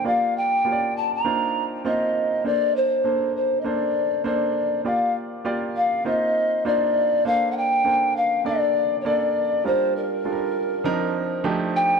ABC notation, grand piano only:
X:1
M:4/4
L:1/8
Q:"Swing 16ths" 1/4=100
K:Bb
V:1 name="Grand piano"
[B,FGd]2 [B,FG_d=d]2 [B,DEFc]2 [B,CEFc]2 | [B,DAc]2 [B,DAc]2 [B,DAc]2 [B,DAc]2 | [B,FGd]2 [B,FGd]2 [B,CEFc]2 [B,DEFc]2 | [B,DAc]2 [B,DAc]2 [B,DAd]2 [B,DAd]2 |
[G,DFB]2 [G,DFAB]2 [F,CDEB]2 [F,A,DEG]2 |]